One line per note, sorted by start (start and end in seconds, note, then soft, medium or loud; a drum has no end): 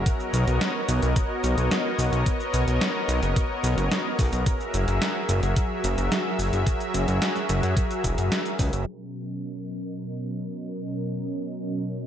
0.00 4.42 F#4 medium
0.00 8.83 A#4 medium
0.06 4.42 B3 medium
0.06 4.42 C#5 medium
0.06 4.42 D#5 medium
0.06 kick loud
0.06 closed hi-hat medium
0.06 shaker soft
0.20 shaker soft
0.33 0.46 B1 loud
0.33 closed hi-hat medium
0.33 shaker medium
0.47 0.59 B1 medium
0.47 closed hi-hat medium
0.47 shaker soft
0.61 snare loud
0.61 closed hi-hat medium
0.61 shaker soft
0.89 1.01 B1 loud
0.89 closed hi-hat medium
0.89 shaker medium
1.02 1.15 B1 medium
1.02 closed hi-hat medium
1.02 shaker soft
1.16 kick loud
1.16 closed hi-hat medium
1.16 shaker soft
1.44 1.56 B1 loud
1.44 closed hi-hat medium
1.44 shaker medium
1.57 1.70 B1 medium
1.57 closed hi-hat medium
1.57 shaker soft
1.71 snare loud
1.71 closed hi-hat medium
1.71 shaker soft
1.99 2.11 B1 medium
1.99 open hi-hat medium
1.99 shaker medium
2.12 2.24 B1 medium
2.12 closed hi-hat medium
2.12 shaker soft
2.26 kick loud
2.26 closed hi-hat medium
2.26 shaker soft
2.40 shaker soft
2.54 2.66 B1 loud
2.54 closed hi-hat medium
2.54 shaker medium
2.67 2.80 B1 medium
2.67 closed hi-hat medium
2.67 shaker soft
2.81 snare loud
2.81 closed hi-hat medium
2.81 shaker soft
3.08 3.21 B1 loud
3.08 closed hi-hat medium
3.08 shaker medium
3.22 3.35 F#1 medium
3.22 closed hi-hat medium
3.22 shaker soft
3.36 kick loud
3.36 closed hi-hat medium
3.36 shaker soft
3.64 3.76 B1 loud
3.64 closed hi-hat medium
3.64 shaker medium
3.77 3.90 F#1 medium
3.77 closed hi-hat medium
3.77 shaker soft
3.92 snare loud
3.92 closed hi-hat medium
3.92 shaker soft
4.19 4.31 B1 medium
4.19 kick loud
4.19 open hi-hat medium
4.19 shaker medium
4.33 4.45 B1 medium
4.33 closed hi-hat medium
4.33 shaker soft
4.46 8.83 F#3 medium
4.46 8.83 F#4 medium
4.46 8.83 G#4 medium
4.46 8.83 E5 medium
4.46 kick loud
4.46 closed hi-hat medium
4.46 shaker soft
4.60 shaker soft
4.74 4.86 F#1 loud
4.74 closed hi-hat medium
4.74 shaker medium
4.88 5.00 F#1 medium
4.88 closed hi-hat medium
4.88 shaker soft
5.02 snare loud
5.02 closed hi-hat medium
5.02 shaker soft
5.29 5.41 F#1 medium
5.29 closed hi-hat medium
5.29 shaker medium
5.42 5.55 F#1 medium
5.42 closed hi-hat medium
5.42 shaker soft
5.56 kick loud
5.56 closed hi-hat medium
5.56 shaker soft
5.84 5.96 F#1 loud
5.84 closed hi-hat medium
5.84 shaker medium
5.98 6.10 F#1 medium
5.98 closed hi-hat medium
5.98 shaker soft
6.12 snare loud
6.12 closed hi-hat medium
6.12 shaker soft
6.39 6.51 F#1 medium
6.39 open hi-hat medium
6.39 shaker medium
6.53 6.65 F#1 medium
6.53 closed hi-hat medium
6.53 shaker soft
6.67 kick loud
6.67 closed hi-hat medium
6.67 shaker soft
6.81 closed hi-hat soft
6.81 shaker soft
6.94 7.06 F#1 loud
6.94 closed hi-hat medium
6.94 shaker medium
7.08 7.20 F#1 medium
7.08 closed hi-hat medium
7.08 shaker soft
7.22 snare loud
7.22 closed hi-hat medium
7.22 shaker soft
7.36 snare soft
7.36 shaker soft
7.49 7.61 F#1 loud
7.49 closed hi-hat medium
7.49 shaker medium
7.63 7.75 F#2 medium
7.63 closed hi-hat medium
7.63 shaker soft
7.77 kick loud
7.77 closed hi-hat medium
7.77 shaker soft
7.91 closed hi-hat soft
7.91 shaker soft
8.04 8.16 E1 loud
8.04 kick medium
8.04 closed hi-hat medium
8.04 shaker medium
8.18 8.30 F#1 medium
8.18 closed hi-hat medium
8.18 shaker soft
8.32 snare loud
8.32 closed hi-hat medium
8.32 shaker soft
8.46 closed hi-hat soft
8.46 shaker soft
8.59 8.71 C#2 loud
8.59 kick loud
8.59 open hi-hat medium
8.59 shaker medium
8.73 8.85 F#1 medium
8.73 closed hi-hat medium
8.73 shaker soft
8.86 12.07 B2 medium
8.86 12.07 F#3 medium
8.86 12.07 C#4 medium
8.86 12.07 A#4 medium
8.86 12.07 D#5 medium
8.86 crash medium